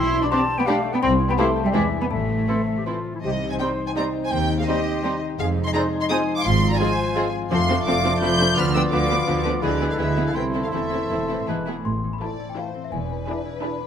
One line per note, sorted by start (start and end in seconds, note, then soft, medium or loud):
0.00 0.26 B1 medium
0.00 1.04 B2 medium
0.00 0.22 E4 medium
0.00 0.22 E4 loud
0.00 0.24 C6 medium
0.00 0.21 E6 loud
0.05 0.92 B3 medium
0.14 0.83 D4 medium
0.22 0.26 D4 medium
0.22 0.32 D4 medium
0.22 0.40 G4 medium
0.22 0.32 B5 medium
0.22 0.31 D6 medium
0.31 0.45 G3 medium
0.31 0.44 C4 medium
0.31 0.40 C4 medium
0.31 0.40 D4 medium
0.31 0.44 G4 medium
0.31 0.39 G4 medium
0.31 0.75 D5 medium
0.31 0.40 D5 medium
0.31 0.45 D5 medium
0.31 0.59 A5 medium
0.31 0.57 C6 loud
0.41 1.27 G4 medium
0.50 0.66 G5 medium
0.58 0.62 B3 medium
0.58 0.63 B3 medium
0.58 0.67 G5 medium
0.58 0.67 B5 medium
0.58 1.04 D6 medium
0.66 0.80 G3 medium
0.66 0.75 A3 loud
0.66 0.94 A3 medium
0.66 0.76 D4 medium
0.66 0.80 G4 medium
0.66 0.75 G4 medium
0.66 0.75 D5 medium
0.66 0.80 D5 medium
0.66 0.94 F5 medium
0.66 1.54 G5 medium
0.66 0.92 A5 loud
0.76 1.04 D5 medium
0.84 1.04 D4 medium
0.93 1.03 B3 medium
0.93 0.97 B3 medium
0.93 1.03 B3 medium
0.93 1.01 G5 medium
0.93 1.03 B5 medium
1.02 1.32 C2 loud
1.02 1.75 C3 medium
1.02 1.14 C4 loud
1.02 1.11 C4 loud
1.02 1.08 G5 loud
1.02 1.27 C6 loud
1.11 1.75 G3 medium
1.19 2.00 E4 medium
1.28 1.33 B3 loud
1.28 1.33 B3 medium
1.28 1.75 G4 medium
1.28 1.33 G5 medium
1.28 1.38 B5 loud
1.38 1.51 E3 medium
1.38 1.46 A3 medium
1.38 1.64 A3 medium
1.38 1.46 E4 medium
1.38 1.50 G4 medium
1.38 1.46 G4 medium
1.38 1.75 C5 medium
1.38 1.46 C5 medium
1.38 1.51 C5 medium
1.38 1.44 F5 loud
1.38 1.63 A5 loud
1.47 2.66 E5 medium
1.56 1.75 G5 medium
1.65 1.68 G3 medium
1.65 1.69 G3 medium
1.65 1.69 E5 medium
1.65 1.74 G5 medium
1.65 1.75 C6 medium
1.74 2.05 E2 medium
1.74 1.87 E3 medium
1.74 2.12 E3 medium
1.74 1.82 G#3 medium
1.74 1.87 G#3 medium
1.74 1.82 D4 medium
1.74 1.82 E4 medium
1.74 1.88 E4 medium
1.74 1.82 B4 medium
1.74 1.88 D5 medium
1.74 2.01 E5 medium
1.74 1.99 G#5 medium
1.92 2.12 D4 medium
2.01 2.05 B3 medium
2.01 2.37 E4 soft
2.01 2.05 G#5 medium
2.01 2.10 B5 medium
2.10 2.42 A1 medium
2.10 3.24 A2 medium
2.10 2.84 A3 medium
2.10 2.84 E5 medium
2.10 2.82 A5 medium
2.19 3.13 E3 soft
2.29 3.03 C4 soft
2.39 3.25 E4 soft
2.47 2.62 E3 soft
2.47 2.57 C4 soft
2.47 2.56 E4 soft
2.47 2.94 A4 medium
2.47 2.56 A4 soft
2.47 2.61 A4 medium
2.47 2.62 C5 soft
2.57 3.69 C5 soft
2.67 2.85 E5 soft
2.76 2.85 G4 soft
2.76 3.25 A5 soft
2.86 2.99 E3 soft
2.86 2.95 C4 soft
2.86 2.94 E4 soft
2.86 3.13 F4 medium
2.86 2.94 A4 soft
2.86 2.99 C5 soft
2.86 3.25 E5 soft
2.95 3.24 A4 soft
3.05 3.41 C4 soft
3.14 3.25 E3 soft
3.14 3.19 E4 soft
3.23 3.54 C2 medium
3.23 3.54 C3 medium
3.23 4.33 C3 medium
3.23 5.35 C4 medium
3.23 5.36 D#4 medium
3.23 3.30 G4 medium
3.23 3.49 D#5 medium
3.33 5.41 G3 soft
3.42 4.39 C4 soft
3.51 4.21 D#4 soft
3.51 3.59 C5 medium
3.51 3.55 G#5 medium
3.59 3.73 G3 soft
3.59 3.68 G3 soft
3.59 3.68 C4 soft
3.59 3.68 D#4 soft
3.59 3.73 D#4 medium
3.59 4.12 G4 soft
3.59 3.86 C5 medium
3.59 3.73 C5 medium
3.59 3.68 G5 medium
3.70 4.03 C5 soft
3.78 3.94 D#5 soft
3.87 3.91 C5 medium
3.87 4.84 G5 soft
3.87 3.91 G#5 medium
3.95 4.09 G3 soft
3.95 4.05 G3 soft
3.95 4.05 C4 soft
3.95 4.03 D#4 medium
3.95 4.09 D#4 medium
3.95 4.09 C5 medium
3.95 4.02 D5 medium
3.95 4.75 D#5 medium
3.95 4.04 A#5 medium
4.05 4.66 C5 soft
4.13 4.56 G4 medium
4.22 4.48 D#4 soft
4.22 4.31 C5 medium
4.22 4.32 G#5 medium
4.31 4.62 D#2 medium
4.31 5.41 D#3 medium
4.31 4.38 C5 medium
4.31 4.59 G5 medium
4.40 5.47 C4 soft
4.49 5.56 D#4 soft
4.58 5.28 G4 soft
4.58 4.63 G#4 medium
4.58 4.68 F5 medium
4.67 4.81 G3 medium
4.67 4.77 G3 medium
4.67 4.76 C4 medium
4.67 4.80 D#4 medium
4.67 4.76 D#4 medium
4.67 4.76 G4 medium
4.67 5.21 G4 medium
4.67 4.80 C5 medium
4.67 5.20 C5 medium
4.67 5.20 D#5 medium
4.76 5.11 D#5 soft
4.85 5.01 G5 soft
4.94 6.00 C6 medium
5.02 5.11 G3 medium
5.02 5.17 G3 medium
5.02 5.11 C4 medium
5.02 5.16 D#4 medium
5.02 5.12 D#4 medium
5.02 5.12 G4 medium
5.02 5.17 C5 medium
5.02 5.40 G5 medium
5.12 5.82 D#5 medium
5.21 5.74 C5 medium
5.30 5.40 G4 medium
5.38 5.69 F1 medium
5.38 5.69 F2 medium
5.38 7.50 F3 medium
5.38 7.46 G#3 medium
5.38 6.43 D#4 medium
5.38 5.45 G#4 medium
5.38 5.47 F5 medium
5.48 6.62 C4 soft
5.57 6.46 D#4 medium
5.66 6.35 G#4 medium
5.66 5.70 D#5 medium
5.66 5.69 C6 medium
5.74 5.83 F3 medium
5.74 5.87 G#3 medium
5.74 5.83 C4 medium
5.74 5.82 D#4 medium
5.74 5.87 D#4 medium
5.74 5.82 G#4 medium
5.74 6.26 C5 medium
5.74 5.87 C5 medium
5.74 5.81 D5 medium
5.74 5.82 A#5 medium
5.83 6.18 D#5 medium
5.93 6.09 G#5 medium
6.01 6.05 D#5 medium
6.01 6.04 C6 medium
6.01 8.58 C6 medium
6.09 6.18 F3 medium
6.09 6.22 G#3 medium
6.09 6.18 C4 medium
6.09 6.22 D#4 medium
6.09 6.18 D#4 medium
6.09 6.18 G#4 medium
6.09 6.22 C5 medium
6.09 6.36 G#5 medium
6.09 7.05 G#5 medium
6.09 6.17 D#6 medium
6.19 6.47 D#5 medium
6.28 6.88 C5 medium
6.36 6.79 G#4 medium
6.36 6.44 F5 medium
6.36 6.45 D6 medium
6.44 6.74 G#1 medium
6.44 7.52 G#2 medium
6.44 6.74 G#2 medium
6.44 7.50 F4 medium
6.44 6.50 F5 medium
6.44 6.71 C6 loud
6.54 7.52 G#3 soft
6.63 7.59 C4 medium
6.71 7.41 F4 medium
6.71 6.79 D5 medium
6.71 6.80 A#5 medium
6.79 6.89 F3 medium
6.79 6.93 G#3 medium
6.79 6.89 C4 medium
6.79 6.92 F4 medium
6.79 6.88 F4 medium
6.79 7.32 G#4 medium
6.79 6.88 G#4 medium
6.79 6.92 C5 medium
6.79 7.32 C5 medium
6.79 7.32 G#5 medium
6.89 7.23 C5 medium
6.97 7.14 F5 medium
7.06 7.52 G#5 medium
7.15 7.24 F3 medium
7.15 7.28 G#3 medium
7.15 7.24 C4 medium
7.15 7.23 F4 medium
7.15 7.28 F4 medium
7.15 7.23 G#4 medium
7.15 7.28 C5 medium
7.15 8.03 F5 medium
7.24 8.58 C5 medium
7.33 7.52 G#4 medium
7.42 7.77 F4 medium
7.51 7.82 F1 medium
7.51 7.82 F2 medium
7.51 9.64 F3 medium
7.51 7.58 F3 medium
7.51 8.58 A3 medium
7.51 7.58 C4 medium
7.51 7.58 D4 medium
7.51 9.64 F4 medium
7.51 7.58 A4 medium
7.51 9.59 D5 medium
7.51 7.84 F5 medium
7.51 7.84 C6 loud
7.60 8.58 C4 medium
7.69 7.76 F3 medium
7.69 7.76 C4 medium
7.69 8.73 D4 medium
7.69 7.76 D4 medium
7.69 7.76 A4 medium
7.78 8.47 F4 medium
7.86 8.18 F1 medium
7.86 8.17 F2 medium
7.86 7.93 F3 medium
7.86 7.99 A3 medium
7.86 7.93 C4 medium
7.86 7.93 D4 medium
7.86 7.99 F4 medium
7.86 8.39 A4 medium
7.86 7.93 A4 medium
7.86 8.20 F5 medium
7.86 8.21 D6 medium
7.95 8.29 D5 medium
8.04 8.11 F3 medium
8.04 8.11 C4 medium
8.04 8.11 D4 medium
8.04 8.11 A4 medium
8.04 8.21 F5 medium
8.13 8.58 A5 medium
8.21 8.53 F1 medium
8.21 8.53 F2 medium
8.21 8.28 F3 medium
8.21 8.35 A3 medium
8.21 8.29 C4 medium
8.21 8.29 D4 medium
8.21 8.35 F4 medium
8.21 8.29 A4 medium
8.21 9.08 F5 medium
8.21 8.56 B5 medium
8.21 8.56 G6 loud
8.30 9.00 D5 medium
8.39 8.46 F3 medium
8.39 8.46 C4 medium
8.39 8.46 D4 medium
8.39 8.47 A4 medium
8.39 8.58 A4 medium
8.48 8.82 F4 soft
8.56 8.88 D2 medium
8.56 8.88 D3 medium
8.56 9.61 D3 medium
8.56 8.63 F3 medium
8.56 8.64 B3 medium
8.56 9.64 B3 medium
8.56 8.64 D4 medium
8.56 8.64 B4 medium
8.56 8.74 B5 medium
8.56 8.75 F6 medium
8.66 9.79 B3 soft
8.74 8.81 F3 medium
8.74 8.81 B3 medium
8.74 10.37 D4 medium
8.74 8.82 D4 medium
8.74 8.82 B4 medium
8.74 8.82 G5 medium
8.74 8.82 E6 medium
8.83 9.53 F4 medium
8.91 9.24 D2 medium
8.91 9.23 D3 medium
8.91 8.99 F3 medium
8.91 8.99 B3 medium
8.91 9.05 B3 medium
8.91 9.00 D4 medium
8.91 9.05 F4 medium
8.91 9.44 B4 medium
8.91 8.99 B4 medium
8.91 9.44 F5 medium
8.91 9.44 D6 medium
9.01 9.35 D5 soft
9.09 9.17 F3 soft
9.09 9.17 B3 soft
9.09 9.17 D4 medium
9.09 9.17 B4 soft
9.09 9.26 F5 soft
9.18 10.37 B5 soft
9.27 9.59 D2 medium
9.27 9.59 D3 medium
9.27 9.35 F3 soft
9.27 9.35 B3 medium
9.27 9.40 B3 medium
9.27 9.34 D4 medium
9.27 9.40 F4 medium
9.27 9.34 B4 medium
9.27 9.64 F5 medium
9.36 10.37 D5 soft
9.44 9.52 F3 soft
9.44 9.52 B3 medium
9.44 9.51 D4 medium
9.44 9.52 B4 soft
9.44 10.06 B4 soft
9.54 9.64 F4 soft
9.62 9.95 D2 medium
9.62 10.37 D3 medium
9.62 9.94 D3 medium
9.62 9.70 E3 medium
9.62 10.35 G#3 medium
9.62 9.96 G#3 medium
9.62 9.70 B3 soft
9.62 11.67 E4 medium
9.62 9.96 E4 medium
9.62 9.70 E4 medium
9.62 9.70 G#4 medium
9.62 9.69 G#4 medium
9.62 10.37 B4 medium
9.62 9.88 D5 medium
9.71 10.36 G#3 soft
9.80 9.88 E3 soft
9.80 10.36 B3 soft
9.80 9.88 B3 soft
9.80 9.88 E4 soft
9.80 9.88 G#4 soft
9.89 10.62 E4 soft
9.89 10.00 A4 medium
9.89 9.94 F5 medium
9.98 10.31 D2 medium
9.98 10.31 D3 medium
9.98 10.06 E3 soft
9.98 10.35 G#3 soft
9.98 10.06 B3 soft
9.98 10.06 E4 soft
9.98 10.34 E4 medium
9.98 10.06 G#4 soft
9.98 10.26 G#4 medium
9.98 10.37 G#4 soft
9.98 10.25 E5 medium
10.07 10.37 B4 soft
10.16 10.24 E3 soft
10.16 10.24 B3 soft
10.16 10.24 E4 soft
10.16 10.24 G#4 soft
10.16 11.19 E5 soft
10.25 10.31 A4 medium
10.25 10.35 F5 medium
10.25 10.36 G#5 soft
10.34 10.68 C2 medium
10.34 10.74 C3 soft
10.34 10.68 C3 medium
10.34 10.43 E3 soft
10.34 10.72 A3 soft
10.34 11.51 A3 soft
10.34 10.43 C4 soft
10.34 10.42 E4 soft
10.34 10.53 E4 soft
10.34 10.42 A4 soft
10.34 10.42 B4 medium
10.34 11.48 C5 soft
10.34 10.43 G5 medium
10.44 11.50 A3 soft
10.54 10.62 E3 soft
10.54 10.81 C4 soft
10.54 10.62 C4 soft
10.54 10.63 D4 soft
10.54 10.61 E4 soft
10.54 10.61 A4 soft
10.63 10.90 E4 soft
10.63 10.73 A4 soft
10.63 10.68 F5 medium
10.72 11.06 E1 medium
10.72 11.06 E2 soft
10.72 11.47 E3 soft
10.72 10.81 E3 soft
10.72 11.47 A3 soft
10.72 11.47 C4 soft
10.72 10.81 C4 soft
10.72 10.80 E4 soft
10.72 10.80 A4 soft
10.72 11.47 A4 soft
10.72 11.47 E5 medium
10.82 11.50 C4 soft
10.91 11.01 E3 soft
10.91 11.01 C4 soft
10.91 10.98 E4 soft
10.91 11.66 E4 soft
10.91 10.99 A4 soft
11.02 11.50 A4 soft
11.10 11.44 E1 soft
11.10 11.19 E2 soft
11.10 11.19 E3 soft
11.10 11.19 C4 soft
11.10 11.18 E4 soft
11.10 11.18 A4 soft
11.10 11.50 C5 soft
11.21 13.87 E5 soft
11.29 11.38 E3 soft
11.29 11.38 C4 soft
11.29 11.36 E4 soft
11.29 11.36 A4 soft
11.29 11.50 A5 soft
11.39 11.43 A2 soft
11.39 11.50 C6 soft
11.47 11.82 E1 soft
11.47 11.56 G#2 medium
11.47 11.56 E3 soft
11.47 11.87 E3 soft
11.47 11.67 G#3 soft
11.47 11.67 B3 soft
11.47 11.56 B3 soft
11.47 11.55 E4 soft
11.47 11.55 G#4 soft
11.47 11.67 B4 soft
11.47 11.74 A5 medium
11.57 11.87 B3 soft
11.66 11.75 E3 soft
11.66 11.75 B3 soft
11.66 11.74 E4 soft
11.66 12.39 E4 soft
11.66 11.74 G#4 soft
11.77 11.84 A2 soft
11.77 11.87 G#4 soft
11.77 11.85 B5 soft
11.85 12.14 A1 medium
11.85 12.14 A2 medium
11.85 12.94 A2 soft
11.85 12.10 C6 medium
12.04 12.94 E3 soft
12.13 12.21 B5 medium
12.21 12.49 E3 soft
12.21 12.35 A3 soft
12.21 12.73 C4 soft
12.21 12.48 E4 soft
12.21 12.35 E4 soft
12.21 12.49 E4 medium
12.21 12.48 A4 soft
12.21 12.55 D5 soft
12.21 12.46 A5 medium
12.40 13.44 E4 soft
12.49 12.57 G5 medium
12.57 12.84 E3 soft
12.57 12.70 A3 soft
12.57 12.83 E4 soft
12.57 12.70 E4 soft
12.57 12.84 E4 soft
12.57 12.94 A4 soft
12.57 12.83 A4 soft
12.57 12.93 C5 soft
12.57 12.82 F5 medium
12.75 12.94 C4 soft
12.84 12.92 E5 medium
12.92 13.20 E1 medium
12.92 13.87 E2 medium
12.92 13.21 E2 medium
12.92 13.87 B4 medium
12.92 13.41 G#5 medium
13.10 13.87 B2 soft
13.27 13.79 D4 soft
13.27 13.40 D4 soft
13.27 13.54 D4 medium
13.27 13.54 E4 medium
13.27 13.41 E4 soft
13.27 13.53 G#4 medium
13.27 13.53 B4 soft
13.45 13.87 E4 soft
13.62 13.75 D4 soft
13.62 13.87 D4 medium
13.62 13.75 E4 soft
13.62 13.87 E4 medium
13.62 13.87 G#4 medium
13.62 13.87 B4 medium
13.62 13.87 B4 soft
13.62 13.87 B5 medium
13.80 13.87 D4 soft